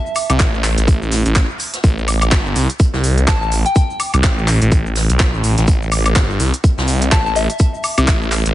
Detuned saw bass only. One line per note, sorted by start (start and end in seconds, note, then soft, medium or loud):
0.30 0.38 C2 loud
0.40 0.76 A1 loud
0.78 0.99 A1 medium
1.02 1.23 A1 medium
1.26 1.47 A1 loud
1.84 2.30 A1 loud
2.32 2.54 G1 loud
2.56 2.67 C2 loud
2.94 3.26 C2 loud
3.28 3.63 A1 loud
4.14 4.22 C2 loud
4.24 4.59 A1 loud
4.62 5.07 A1 loud
5.10 5.32 B1 loud
5.34 5.42 A1 loud
5.44 5.55 A1 loud
5.58 5.66 A1 loud
5.68 6.14 A1 loud
6.16 6.38 G1 medium
6.40 6.52 C2 loud
6.78 7.10 C2 medium
7.12 7.48 A1 loud
7.98 8.06 C2 loud
8.08 8.44 A1 loud
8.46 8.54 A1 medium